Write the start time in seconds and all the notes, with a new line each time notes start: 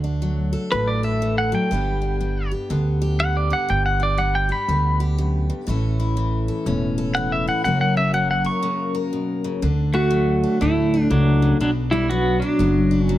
Already playing: D2 D3 A3 F#4
0.04 D4
0.22 F#3
0.53 A4
0.72 A1 A2 A3 B4
0.87 D5
1.03 A4 E5
1.22 E3
1.38 F#5
1.52 F#3 G5
1.71 G1 G2 G3 B3 D4 G4
2.02 D4
2.21 G3
2.51 G4
2.70 D2 D3 B3
3.02 G4
3.20 G3 F#5
3.37 D5
3.50 D4 F#5
3.69 G1 G2 G5
3.86 F#5
4.00 D4 D5
4.18 G3 F#5
4.35 G5
4.49 G4 B5
4.68 D2 D3 B3
5.00 G4
5.18 F#2
5.50 G2
5.67 A1 A2 E3 C#4 E4 A4
6.00 E4
6.17 E3
6.48 A4
6.66 E1 A2 C#4
6.98 A4
7.15 E3 F#5
7.32 E5
7.47 E4 F#5
7.64 F#1 F#2 F#3 A#3 C#4 A#4 F#5
7.81 F#5
7.97 C#4 E5
8.14 F#3 F#5
8.31 F#5
8.44 A#4 C#6
8.63 C#3 A#3
8.95 A#4
9.13 B2
9.44 C#3
9.62 D2 D3 D4
9.93 A3 D4 F#4
10.11 F#3
10.43 D4
10.61 D2 A2 A3 E4
10.94 D4
11.10 C#2 D3 F#3 D4
11.42 C#3
11.60 B1 B2 F#3 D4
11.91 G3 D4 E4
12.10 F#3 B3 F#4
12.40 F#3 D4
12.59 F#1 F#2 B3
12.91 D4
13.04 C#4
13.09 F#3